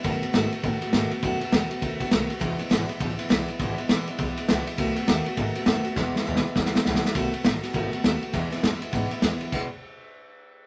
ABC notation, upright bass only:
X:1
M:4/4
L:1/8
Q:"Swing" 1/4=203
K:E
V:1 name="Upright bass" clef=bass
F,, z G,, z A,, z G,, z | F,, z E,, z D,, z B,,, z | E,,, z G,,, z A,,, z B,,, z | G,,, z ^A,,, z B,,, z C,, z |
B,,, z D,, z G,, z F,, z | E,, z D,, z E,, z C,, z | B,,, z A,,, z G,,, z D,, z | E,, z F,, z G,, z E,, z |
E,, z6 z |]